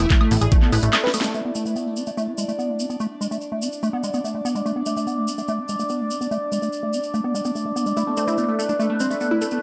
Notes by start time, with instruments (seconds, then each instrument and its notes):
Already playing: synth drone E4 D5
0.00 analog synth bass E1, acid bass A3, supersaw synth E4, closed hi-hat, high woodblock
0.10 supersaw synth A3, kick, clap, closed hi-hat, shaker
0.21 supersaw synth A3, acid bass A3, high woodblock
0.31 analog synth bass A1, supersaw synth A3, acid bass C4, open hi-hat, shaker
0.41 analog synth bass A1, supersaw synth G#4, closed hi-hat, high woodblock, shaker
0.51 supersaw synth A3, acid bass A3, kick, closed hi-hat, shaker
0.62 supersaw synth A3, acid bass B3, clap
0.72 analog synth bass A1, acid bass E4, supersaw synth B4, open hi-hat, high woodblock, shaker
0.83 analog synth bass A1, supersaw synth A3, closed hi-hat, shaker
0.93 supersaw synth A3, acid bass A3, snare, clap, closed hi-hat, high woodblock, shaker
1.04 acid bass C4, supersaw synth B4, snare
1.14 acid bass A3, supersaw synth A3, open hi-hat, high woodblock, shaker
1.21 acid bass G#3, supersaw synth A3, snare, closed hi-hat, shaker
1.34 acid bass A3, synth drone D4 D5, shaker
1.45 acid bass B3
1.55 acid bass A3, shaker
1.66 acid bass A3, shaker
1.76 acid bass B3, shaker
1.86 acid bass A3
1.96 acid bass C4, shaker
2.07 acid bass A3, shaker
2.17 acid bass A3, shaker
2.28 acid bass C4
2.38 acid bass G#3, shaker
2.48 acid bass A3, shaker
2.59 acid bass B3, shaker
2.69 acid bass A3
2.79 acid bass C4, shaker
2.90 acid bass B3, shaker
3.00 acid bass A3, shaker
3.21 acid bass G#3, shaker
3.31 acid bass A3, shaker
3.41 shaker
3.52 acid bass A3
3.62 acid bass C4, shaker
3.72 shaker
3.83 acid bass A3, shaker
3.93 acid bass B3
4.04 acid bass G#3, shaker
4.14 acid bass B3, shaker
4.24 acid bass A3, shaker
4.35 acid bass A3
4.45 acid bass B3, shaker
4.55 acid bass G#3, shaker
4.66 acid bass A3, shaker
4.76 acid bass B3
4.86 acid bass A3, shaker
4.97 acid bass A3, shaker
5.07 acid bass B3, shaker
5.17 acid bass A3
5.28 acid bass C4, shaker
5.38 acid bass A3, shaker
5.48 acid bass A3, shaker
5.59 acid bass C4
5.69 acid bass G#3, shaker
5.79 acid bass A3, shaker
5.89 acid bass B3, shaker
6.00 acid bass A3
6.10 acid bass C4, shaker
6.21 acid bass B3, shaker
6.31 acid bass A3, shaker
6.52 acid bass G#3, shaker
6.62 acid bass A3, shaker
6.72 shaker
6.83 acid bass A3
6.93 acid bass C4, shaker
7.03 shaker
7.14 acid bass A3, shaker
7.24 acid bass B3
7.35 acid bass G#3, shaker
7.45 acid bass B3, shaker
7.55 acid bass A3, shaker
7.66 acid bass A3
7.76 acid bass B3, shaker
7.86 acid bass G#3, shaker
7.97 acid bass A3, supersaw synth E4, synth drone B4, shaker
8.07 supersaw synth A3, acid bass B3
8.17 acid bass A3, supersaw synth A3, synth arpeggio sound C4, shaker
8.28 acid bass A3, synth arpeggio sound C4, supersaw synth E4, shaker
8.38 supersaw synth A3, acid bass B3, shaker
8.48 acid bass A3, supersaw synth A3
8.59 supersaw synth A3, acid bass C4, shaker
8.69 acid bass A3, supersaw synth D4, shaker
8.79 acid bass A3, supersaw synth A3, shaker
8.90 supersaw synth A3, acid bass C4
9.00 acid bass G#3, supersaw synth C4, shaker
9.10 supersaw synth A3, acid bass A3, shaker
9.20 supersaw synth A3, acid bass B3, shaker
9.31 acid bass A3, supersaw synth E4
9.41 supersaw synth A3, synth arpeggio sound A3, acid bass C4, shaker
9.51 supersaw synth A3, acid bass B3, shaker